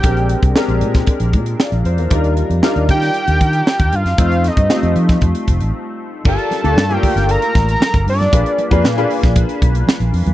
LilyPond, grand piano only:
\new Staff \with { instrumentName = "Grand piano" } { \time 4/4 \key bes \major \tempo 4 = 116 << { r2. <f' d''>8 c''16 <d' bes'>16~ | <d' bes'>16 r2. r8. | r1 | r1 |
r1 | } \\ { <aes c' d' g' bes'>4 <aes c' d' g' bes'>4.~ <aes c' d' g' bes'>16 r4 r16 | <g d' ees' f' bes'>4 <g d' ees' f' bes'>4.~ <g d' ees' f' bes'>16 r4 r16 | <a c' ees' f' c''>4 <g a c' ees' f' c''>4.~ <g a c' ees' f' c''>16 r4 r16 | <d' f' g' a' bes'>8. <a d' f' g' a'>8 <bes d' f' g' a' bes'>4.~ <bes d' f' g' a' bes'>16 r4 |
<bes d' f' aes' ces''>8. <bes d' f' aes' ces''>8 <bes d' f' aes' ces''>4.~ <bes d' f' aes' ces''>16 r4 | } >> }